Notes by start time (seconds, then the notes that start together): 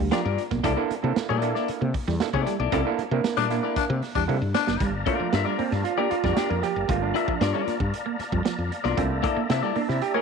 0.00 A4
0.11 F3 A#3 D4 F4 G4 A#4 D5, snare, closed hi-hat
0.24 G2 D4 F4 A#4 D5
0.38 muted clean electric guitar stroke, closed hi-hat
0.51 B1 A#3, kick, snare
0.63 C2 A#3 C4 D4 E4 A4 D5, kick, closed hi-hat
0.76 A#3 D4 E4 A4
0.90 muted clean electric guitar stroke, muted fretless electric bass stroke, closed hi-hat
1.03 C3 A#3 D4 E4 A4
1.16 muted clean electric guitar stroke, muted fretless electric bass stroke, snare, closed hi-hat
1.29 A#2 G3 A#3 E4 A4 D5
1.42 A#3 D4 E4 A4, closed hi-hat
1.55 A#3 E4 A4 D5, snare
1.68 muted fretless electric bass stroke, closed hi-hat
1.81 C3 A#3
1.94 muted clean electric guitar stroke, kick, open hi-hat
2.07 E2 G3 E4 A4, snare
2.20 A#3 D4 E4 A4, muted clean electric guitar stroke, snare, closed hi-hat
2.33 C3 A#3 E4 A4 D5, kick
2.46 G3, snare, closed hi-hat
2.60 B1 A#3 E4 A4 D5
2.72 C2 A#3 C4 D4 E4 A4 D5, kick, closed hi-hat
2.85 A#3 D4 E4 A4
2.98 muted fretless electric bass stroke, muted clean electric guitar stroke, closed hi-hat
3.11 C3 A#3 D4 E4 A#4
3.24 muted clean electric guitar stroke, snare, closed hi-hat
3.37 A#2 G3 A#3 D4 E4 A4 D5
3.50 A#3 D4 E4 A#4, snare, closed hi-hat
3.63 A#3 E4 A4 D5
3.76 D4, muted fretless electric bass stroke, kick, closed hi-hat
3.90 C3 A#3
4.02 muted clean electric guitar stroke, snare, open hi-hat
4.15 E2 G3 D4 E4 G4, kick
4.28 C3 G3 A#3 D4 E4 A4
4.42 G2 A4
4.54 D4, muted clean electric guitar stroke, snare
4.67 F#1 A#3, snare
4.80 G1 G3 D5 F5 A5 A#5, kick, closed hi-hat
5.06 A3 A#3 D4 F4 A#4 D5, muted clean electric guitar stroke, kick, closed hi-hat
5.20 F3, muted fretless electric bass stroke
5.33 G2 D4 F4 A#4 E5, muted clean electric guitar stroke, snare, closed hi-hat
5.45 G3 D4 F4 A#4 D5
5.59 A#3 C4, muted fretless electric bass stroke, open hi-hat
5.71 G2 D4, snare
5.84 F4, closed hi-hat
5.98 A#3 D4 F4 G4 A#4 D5
6.11 F4, muted clean electric guitar stroke, muted fretless electric bass stroke, closed hi-hat
6.24 F2 G3 D4 F4 A#4 D5, kick, snare
6.33 D4 F#4 G4, snare, closed hi-hat
6.37 F4 A#4 D5, muted clean electric guitar stroke, muted fretless electric bass stroke
6.50 F2 A#3 A#4
6.63 F3 G4, snare, closed hi-hat
6.76 F#1
6.88 G1 G3 A3 A#3 F4, kick, closed hi-hat
7.02 D4
7.14 D4 F4 A#4 E5, muted clean electric guitar stroke, closed hi-hat
7.28 F3, muted fretless electric bass stroke, kick
7.41 G2 D4 F4 A#4 D5, muted clean electric guitar stroke, snare, closed hi-hat
7.54 G3 D4 F4 A#4 D5
7.67 A#3, muted fretless electric bass stroke, snare, closed hi-hat
7.80 G2, kick
7.94 closed hi-hat
8.06 A#3
8.19 muted fretless electric bass stroke, muted clean electric guitar stroke, snare, closed hi-hat
8.32 F2 G3, kick
8.45 F3, muted fretless electric bass stroke, snare, closed hi-hat
8.58 F2
8.72 muted clean electric guitar stroke, closed hi-hat
8.84 B1 A#3 D4 F4 A#4 D5, snare
8.97 C2 A3 A#3 C4 D4 E4 D5 E5 A#5, kick, closed hi-hat
9.23 A#3 E4 A4 D5, muted clean electric guitar stroke, kick, closed hi-hat
9.37 A#3, muted fretless electric bass stroke
9.50 C3 A#3 E4 A4 E5, muted clean electric guitar stroke, snare, closed hi-hat
9.63 G3 A#3 E4 A4 D5
9.76 A#3 D4, muted fretless electric bass stroke, open hi-hat
9.89 C3 E4, snare
10.02 G4, closed hi-hat
10.14 A#3 E4 A4 A#4 D5